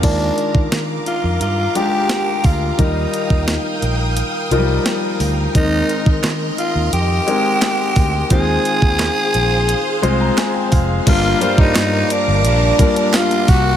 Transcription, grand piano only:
\new Staff \with { instrumentName = "Grand piano" } { \time 4/4 \key bes \mixolydian \tempo 4 = 87 << { ees4. r2 r8 | ees4. r2 r8 | ees4. r2 r8 | ees4. r4 c'''16 bes''16 aes''16 g''16 f''8 |
g,4. r2 r8 | } \\ { <aes d' f' bes'>4. r4 <aes d' f' g'>4 r8 | <g ees' f' bes'>4. r4 <f g ees' f' bes'>4 r8 | <aes c' ees' bes'>4. r4 <aes c' ees' bes'>4 r8 | <aes c' f' c''>4. r4 <aes c' f' c''>4 r8 |
<g bes d' f' bes'>8 <g bes f' c'' d''>4. r8 <g bes d' f' bes'>4 r8 | } >> }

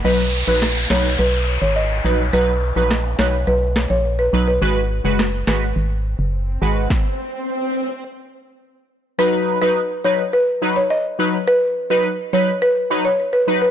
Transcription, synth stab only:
\new Staff \with { instrumentName = "Synth stab" } { \time 4/4 \key b \major \tempo 4 = 105 <fis dis' b'>16 r8 <fis dis' b'>16 r8 <fis dis' b'>16 r4. r16 <fis dis' b'>16 r16 | <fis dis' b'>16 r8 <fis dis' b'>16 r8 <fis dis' b'>16 r4. r16 <fis dis' b'>16 r16 | <gis fis' b'>16 r8 <gis fis' b'>16 r8 <gis fis' b'>16 r4. r16 <gis fis' b'>8 | r1 |
<fis dis' b'>8. <fis dis' b'>16 r8 <fis dis' b'>16 r8. <fis dis' b'>16 r8. <fis dis' b'>16 r16 | r8. <fis dis' b'>16 r8 <fis dis' b'>16 r8. <fis dis' b'>16 r8. <fis dis' b'>16 r16 | }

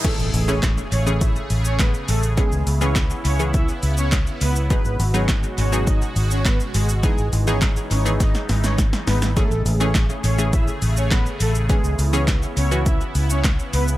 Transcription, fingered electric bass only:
\new Staff \with { instrumentName = "Fingered electric bass" } { \clef bass \time 4/4 \key a \lydian \tempo 4 = 103 r16 a,,16 a,,4 a,,4 a,,4 a,,8~ | a,,16 cis,16 cis,4 cis,4 cis,4 cis,8~ | cis,16 gis,,16 gis,,4 gis,,4 gis,,4 gis,,8~ | gis,,16 gis,,16 gis,,4 gis,,4 gis,,4 gis,,8~ |
gis,,16 a,,16 a,,4 a,,4 a,,4 a,,8~ | a,,16 cis,16 cis,4 cis,4 cis,4 cis,8 | }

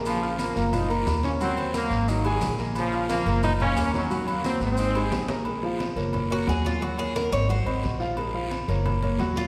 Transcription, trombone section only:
\new Staff \with { instrumentName = "Trombone section" } { \time 4/4 \key bes \minor \tempo 4 = 178 <des f>4 <f bes>4 <bes ees'>8 r4 <bes des'>8 | <ges c'>4 <ges bes>4 <ees ges>4. r8 | <des f>4 <f bes>4 <bes ees'>8 <bes des'>4 <ees ges>8~ | <ees ges>8 <ges bes>8 <ges c'>8 <aes c'>2 r8 |
r1 | r1 | r1 | }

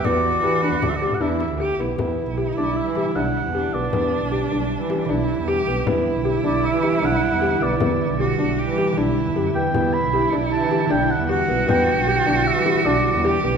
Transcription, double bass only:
\new Staff \with { instrumentName = "Double bass" } { \clef bass \time 5/4 \key e \minor \tempo 4 = 155 e,4 e8. e,16 d,8 r16 a,16 e,8. d,8. b,,16 r16 | e,8. b,,8. b,,8. e8 r16 b,,8 r16 e,8. b,,16 r16 | e,8. b,,8. b,,8. e8 r16 b,,8 r16 e,8. b,,16 r16 | e,8. b,,8. b,,8. e8 r16 b,,8 r16 e,8. b,,16 r16 |
e,8. b,,8. b,,8. e8 r16 b,,8 r16 e,16 fis,8 e,8 | e,8. b,,8. b,,8. e8 r16 b,,8 r16 e,8. b,,16 r16 | e,8. b,,8. b,,8. e8 r16 b,,8 r16 e,8. b,,16 r16 | }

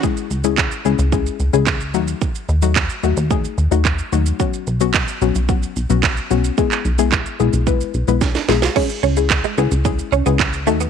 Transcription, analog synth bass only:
\new Staff \with { instrumentName = "Analog synth bass" } { \clef bass \time 4/4 \key cis \minor \tempo 4 = 110 r8 cis,4 cis,16 cis,8. cis,16 cis,8. dis,8 | r8 dis,4 dis,16 dis,8. dis,16 dis,8. dis,8 | r8 b,,4 b,,16 b,,8. b,,16 b,,8. b,,8 | r8 b,,4 b,,16 b,,8. b,,16 b,,8. b,,8 |
r8 cis,4 cis,16 cis,8. cis,16 cis,8. dis,8 | }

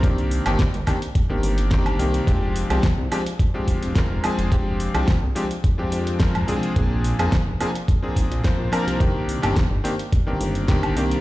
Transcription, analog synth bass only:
\new Staff \with { instrumentName = "Analog synth bass" } { \clef bass \time 4/4 \key f \dorian \tempo 4 = 107 c,8. g,,16 r16 g,,16 r8. g,,16 g,,4 c,8 | f,,8. c,16 r16 c,16 r4 d,,16 f,,16 r16 f,,16 r16 f,,16~ | f,,8. c,16 r16 c,16 r8. f,16 f,8. f,,16 c,16 r16 | bes,,8. f,16 r16 f,,16 r4 aes,,16 bes,,16 r16 bes,,16 r16 c,16~ |
c,8. g,,16 r16 g,,16 r8. g,,16 g,,4 c,8 | }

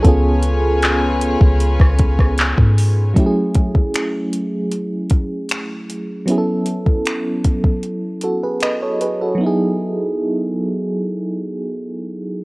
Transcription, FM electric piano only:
\new Staff \with { instrumentName = "FM electric piano" } { \time 4/4 \key e \major \tempo 4 = 77 << { r1 | r1 | r2 r8 <fis' a'>16 <gis' b'>16 <b' dis''>16 <a' cis''>16 <gis' b'>16 <fis' a'>16~ | <fis' a'>16 r2. r8. | } \\ { <b cis' eis' gis' a'>1 | <fis a cis' e' g' gis'>1 | <fis b cis' e' gis' a'>2~ <fis b cis' e' gis' a'>8 r4. | <fis b dis' e' gis'>1 | } >> }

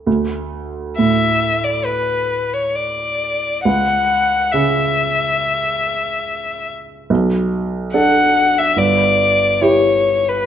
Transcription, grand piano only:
\new Staff \with { instrumentName = "Grand piano" } { \clef bass \time 4/4 \key d \major \tempo 4 = 69 d,4 a,2. | cis,4 cis2. | b,,4 <d' a'>4 g,,4 <e' g'>4 | }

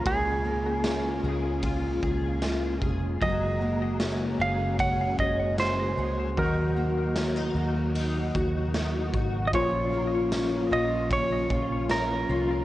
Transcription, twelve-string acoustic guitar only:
\new Staff \with { instrumentName = "Twelve-string acoustic guitar" } { \time 4/4 \key des \major \tempo 4 = 76 <des aes'>8 bes8 f'8 aes'8 f'8 aes'8 f'8 aes'8 | <ges aes'>8 bes8 des'8 aes'8 des'8 aes'8 des'8 aes'8 | <ees ges'>8 bes8 des'16 ees'16 ges'8 ees'8 ges'8 ees'8 ges'8 | <bes, f'>8 bes8 des'8 f'8 des'8 f'8 des'8 f'8 | }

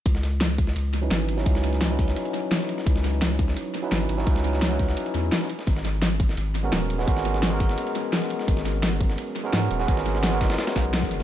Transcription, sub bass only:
\new Staff \with { instrumentName = "Sub bass" } { \clef bass \time 4/4 \key cis \minor \tempo 4 = 171 cis,2 cis,4 gis,,4 | cis,2 r2 | cis,2 r4 gis,,8 gis,,8 | cis,2 r8 e,8 r4 |
gis,,2 gis,,4 dis,,4 | gis,,2 r2 | gis,,2 r4 gis,8 dis,,8 | gis,,2 r8 b,,4 fis,,8 | }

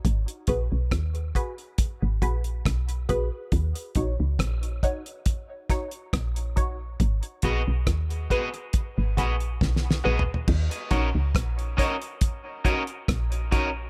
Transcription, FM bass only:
\new Staff \with { instrumentName = "FM bass" } { \clef bass \time 4/4 \key ees \minor \tempo 4 = 69 aes,,16 r16 bes,,16 ces,16 ees,8 r8. aes,,16 bes,,8 ces,8 bes,,16 r16 | ees,16 r16 bes,,16 des,16 bes,,8 r4. bes,,4 | aes,,16 r16 bes,,16 ces,16 ees,8 r8. aes,,16 bes,,8 ces,8 bes,,16 r16 | ees,16 r16 bes,,16 des,16 bes,,8 r4. bes,,4 | }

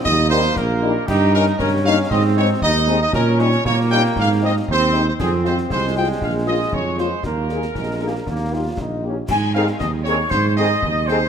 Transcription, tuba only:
\new Staff \with { instrumentName = "Tuba" } { \clef bass \time 2/4 \key ees \major \tempo 4 = 117 ees,4 bes,,4 | \key aes \major g,4 g,4 | aes,4 ees,4 | bes,4 bes,4 |
aes,4 ees,4 | f,4 c,4 | bes,,4 f,4 | ees,4 bes,,4 |
ees,4 bes,,4 | aes,4 ees,4 | aes,4 ees,4 | }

